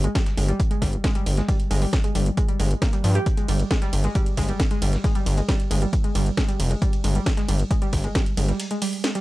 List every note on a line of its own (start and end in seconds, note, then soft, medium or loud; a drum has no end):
0.04 0.07 G#3 medium
0.04 closed hi-hat medium
0.15 0.23 G3 medium
0.15 kick loud
0.15 snare loud
0.15 closed hi-hat medium
0.26 snare medium
0.26 closed hi-hat medium
0.37 0.52 G1 loud
0.37 0.41 G#3 medium
0.37 closed hi-hat medium
0.37 open hi-hat loud
0.49 0.57 G3 medium
0.49 closed hi-hat medium
0.60 kick loud
0.60 closed hi-hat medium
0.71 0.74 G#3 medium
0.71 closed hi-hat medium
0.82 0.97 G1 loud
0.82 0.90 G3 medium
0.82 kick medium
0.82 snare medium
0.82 closed hi-hat medium
0.82 open hi-hat loud
0.93 closed hi-hat medium
1.04 1.07 G#3 medium
1.04 kick loud
1.04 snare loud
1.04 closed hi-hat medium
1.15 1.23 G3 medium
1.15 closed hi-hat medium
1.26 1.41 G1 medium
1.26 closed hi-hat medium
1.26 open hi-hat loud
1.37 1.41 G#3 medium
1.37 snare soft
1.37 closed hi-hat medium
1.49 1.57 G3 medium
1.49 kick loud
1.49 closed hi-hat medium
1.49 open hi-hat medium
1.60 closed hi-hat medium
1.71 1.85 G1 loud
1.71 1.74 G#3 medium
1.71 closed hi-hat medium
1.71 open hi-hat loud
1.82 1.90 G3 medium
1.82 closed hi-hat soft
1.82 open hi-hat medium
1.93 kick loud
1.93 snare loud
1.93 closed hi-hat medium
2.04 2.07 G#3 medium
2.04 closed hi-hat medium
2.15 2.30 G1 medium
2.15 2.23 G3 medium
2.15 closed hi-hat medium
2.15 open hi-hat loud
2.26 closed hi-hat medium
2.37 2.41 G#3 medium
2.37 kick loud
2.37 closed hi-hat medium
2.48 2.57 G3 medium
2.48 closed hi-hat medium
2.60 2.74 G1 loud
2.60 2.65 G#3 medium
2.60 closed hi-hat medium
2.60 open hi-hat loud
2.71 closed hi-hat medium
2.82 2.87 A#3 medium
2.82 kick loud
2.82 snare loud
2.82 closed hi-hat medium
2.93 3.01 G3 medium
2.93 closed hi-hat soft
2.93 closed hi-hat medium
3.04 3.19 G2 loud
3.04 3.09 F3 loud
3.04 closed hi-hat medium
3.04 open hi-hat loud
3.15 3.21 G4 loud
3.15 closed hi-hat medium
3.26 kick loud
3.26 closed hi-hat medium
3.37 3.41 G#3 medium
3.37 closed hi-hat soft
3.48 3.63 G1 loud
3.48 3.57 G3 medium
3.48 closed hi-hat medium
3.48 open hi-hat loud
3.48 ride medium
3.60 closed hi-hat medium
3.71 3.74 G#3 medium
3.71 kick loud
3.71 snare loud
3.71 closed hi-hat medium
3.82 3.90 G3 medium
3.82 snare soft
3.82 closed hi-hat medium
3.93 4.08 G1 loud
3.93 closed hi-hat medium
3.93 open hi-hat loud
3.93 ride medium
4.04 4.07 G#3 medium
4.04 closed hi-hat medium
4.15 4.23 G3 medium
4.15 kick loud
4.15 closed hi-hat medium
4.26 closed hi-hat medium
4.37 4.52 G1 loud
4.37 4.41 G#3 medium
4.37 kick medium
4.37 snare medium
4.37 closed hi-hat medium
4.37 open hi-hat loud
4.37 ride medium
4.48 4.57 G3 medium
4.48 closed hi-hat medium
4.60 kick loud
4.60 snare loud
4.60 closed hi-hat medium
4.71 4.74 G#3 medium
4.71 closed hi-hat medium
4.82 4.97 G1 medium
4.82 4.90 G3 medium
4.82 closed hi-hat medium
4.82 open hi-hat loud
4.82 ride medium
4.93 snare soft
4.93 closed hi-hat medium
5.04 5.07 G#3 medium
5.04 kick loud
5.04 closed hi-hat medium
5.04 open hi-hat medium
5.15 5.23 G3 medium
5.15 closed hi-hat medium
5.26 5.41 G1 loud
5.26 closed hi-hat medium
5.26 open hi-hat loud
5.26 ride medium
5.38 5.41 G#3 medium
5.38 closed hi-hat soft
5.38 closed hi-hat medium
5.49 5.57 G3 medium
5.49 kick loud
5.49 snare loud
5.49 closed hi-hat medium
5.60 closed hi-hat soft
5.71 5.85 G1 medium
5.71 5.74 G#3 medium
5.71 closed hi-hat medium
5.71 open hi-hat loud
5.71 ride medium
5.82 5.90 G3 medium
5.82 closed hi-hat medium
5.93 kick loud
5.93 closed hi-hat medium
6.04 6.07 G#3 medium
6.04 closed hi-hat medium
6.15 6.30 G1 loud
6.15 6.23 G3 medium
6.15 closed hi-hat medium
6.15 open hi-hat loud
6.15 ride medium
6.26 closed hi-hat soft
6.37 6.41 G#3 medium
6.37 kick loud
6.37 snare loud
6.37 closed hi-hat medium
6.48 6.56 G3 medium
6.48 closed hi-hat medium
6.48 closed hi-hat soft
6.60 6.74 F1 loud
6.60 closed hi-hat medium
6.60 open hi-hat loud
6.60 ride medium
6.71 6.74 G#3 medium
6.71 closed hi-hat medium
6.82 6.90 G3 medium
6.82 kick loud
6.82 closed hi-hat medium
6.93 closed hi-hat soft
6.93 closed hi-hat medium
7.04 7.19 G1 loud
7.04 7.07 G#3 medium
7.04 closed hi-hat medium
7.04 open hi-hat loud
7.04 ride medium
7.15 7.23 G3 medium
7.15 closed hi-hat medium
7.26 kick loud
7.26 snare loud
7.26 closed hi-hat medium
7.37 7.41 G#3 medium
7.37 snare medium
7.37 closed hi-hat medium
7.48 7.63 G1 loud
7.48 7.57 G3 medium
7.48 closed hi-hat medium
7.48 open hi-hat loud
7.48 ride medium
7.60 closed hi-hat medium
7.71 7.74 G#3 medium
7.71 kick loud
7.71 closed hi-hat medium
7.82 7.90 G3 medium
7.82 closed hi-hat medium
7.93 8.08 G1 loud
7.93 kick medium
7.93 snare medium
7.93 closed hi-hat medium
7.93 open hi-hat loud
7.93 ride medium
8.04 8.07 G#3 medium
8.04 closed hi-hat medium
8.15 8.23 G3 medium
8.15 kick loud
8.15 snare loud
8.15 closed hi-hat medium
8.26 closed hi-hat medium
8.37 8.52 G1 medium
8.37 8.41 G#3 medium
8.37 closed hi-hat medium
8.37 open hi-hat loud
8.37 ride medium
8.48 8.57 G3 medium
8.48 snare soft
8.48 closed hi-hat medium
8.60 closed hi-hat medium
8.60 open hi-hat medium
8.71 8.74 G#3 medium
8.71 closed hi-hat medium
8.82 8.90 G3 medium
8.82 closed hi-hat medium
8.82 open hi-hat loud
8.82 ride medium
8.93 open hi-hat medium
9.04 9.07 G#3 medium
9.04 snare loud
9.04 closed hi-hat medium
9.15 9.21 G3 medium
9.15 snare soft
9.15 closed hi-hat medium